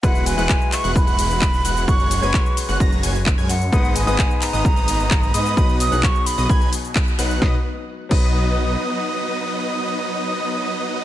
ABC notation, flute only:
X:1
M:4/4
L:1/8
Q:1/4=130
K:B
V:1 name="Flute"
f g2 c' b4 | c'4 z3 f- | f g2 a4 b- | b d' c' b2 z3 |
z8 | z8 |]